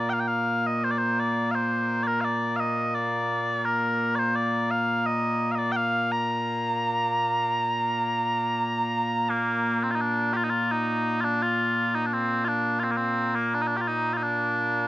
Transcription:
0.00 14.88 A#2 medium
0.00 9.30 A#3 medium
0.09 0.20 F5 medium
0.09 0.13 G5 medium
0.20 0.28 G5 medium
0.28 0.66 F5 medium
0.66 0.84 D#5 medium
0.84 0.91 C5 loud
0.91 0.98 D5 medium
0.98 1.19 C5 medium
1.19 1.51 D5 medium
1.51 2.03 C5 medium
1.51 1.55 F5 medium
2.03 2.07 D5 medium
2.07 2.21 A#4 medium
2.21 2.56 D5 medium
2.21 2.24 F5 medium
2.56 2.95 D#5 medium
2.56 2.60 F5 medium
2.95 3.65 D5 medium
3.65 4.15 A#4 loud
4.15 4.35 C5 medium
4.15 4.19 D5 medium
4.35 4.71 D5 loud
4.71 5.06 F5 medium
5.06 5.51 D#5 loud
5.51 5.58 D#5 medium
5.51 5.55 F5 medium
5.58 5.72 D5 loud
5.72 5.76 G5 loud
5.76 6.12 F5 loud
6.12 9.30 A#5 medium
9.30 9.84 A#3 medium
9.84 9.91 C4 medium
9.91 9.95 F4 medium
9.95 10.01 D#4 medium
10.01 10.33 D4 medium
10.33 10.44 F4 medium
10.33 10.36 G4 medium
10.44 10.50 D#4 medium
10.50 10.72 F4 medium
10.72 11.21 D#4 medium
11.21 11.42 D4 medium
11.21 11.24 F4 medium
11.42 11.95 F4 medium
11.95 12.06 D#4 medium
12.06 12.13 D4 medium
12.13 12.45 C4 loud
12.45 12.80 D4 medium
12.45 12.48 F4 medium
12.79 12.84 F4 medium
12.84 12.91 C4 medium
12.91 12.97 A#3 medium
12.97 13.35 C4 medium
13.35 13.54 A#3 medium
13.54 13.61 D4 medium
13.61 13.67 D#4 medium
13.67 13.76 D4 medium
13.76 13.81 G4 medium
13.81 13.88 F4 medium
13.88 14.14 D#4 medium
14.14 14.23 D#4 medium
14.14 14.17 F4 medium
14.23 14.88 D4 medium

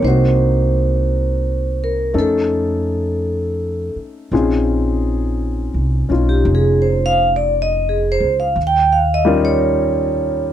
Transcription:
0.00 2.11 C2 medium
0.00 2.12 A#3 soft
0.00 2.14 C4 soft
0.04 2.13 D#4 soft
0.04 2.18 F#4 soft
0.04 1.85 C5 medium
1.84 2.18 A#4 medium
2.13 3.91 F2 medium
2.13 4.31 A3 soft
2.13 4.31 C#4 soft
2.13 4.32 D#4 soft
2.13 4.32 A4 soft
2.19 3.94 A4 medium
3.96 muted upright bass stroke soft
4.32 5.71 A#1 medium
4.32 8.57 C4 soft
4.32 6.07 C#4 soft
4.32 6.09 D#4 soft
4.32 6.10 F4 soft
4.32 8.57 G#4 medium
5.74 6.07 C2 medium
6.09 6.43 B1 medium
6.09 8.56 C#4 soft
6.09 8.57 D#4 soft
6.09 8.57 F4 soft
6.29 6.46 G4 medium
6.45 8.17 F1 medium
6.55 6.84 G#4 medium
6.82 7.15 C5 medium
7.06 7.28 F5 medium
7.36 7.52 D5 medium
7.62 7.91 D#5 medium
7.89 8.22 G#4 soft
8.12 8.34 C5 medium
8.20 8.54 C#2 medium
8.40 8.56 F5 medium
8.56 10.53 D#2 medium
8.67 8.96 G5 medium
8.93 9.26 F5 medium
9.14 9.37 D#5 medium
9.25 10.53 G3 medium
9.25 10.53 C#4 medium
9.25 10.53 D#4 soft
9.25 10.53 F4 soft
9.25 10.53 A#4 medium
9.45 10.44 C#5 medium

